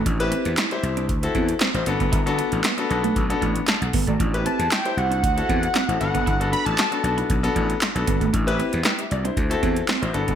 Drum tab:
HH |xxxxxxxxxxxxxxxx|xxxxxxxxxxxxxxox|xxxxxxxxxxxxxxxx|xxxxxxxxxxxxxxxx|
CP |----x-------x---|----x-------x---|----x-------x---|----x-------x---|
SD |----o-------o---|----o-------o---|----o-------o---|----o-------o---|
BD |o-------o-o----o|o-------o-o---oo|o-------o-o----o|o-------o-o---oo|

HH |xxxxxxxxxxxxxxxx|
CP |----x-------x---|
SD |----o-------o---|
BD |o-------o-o----o|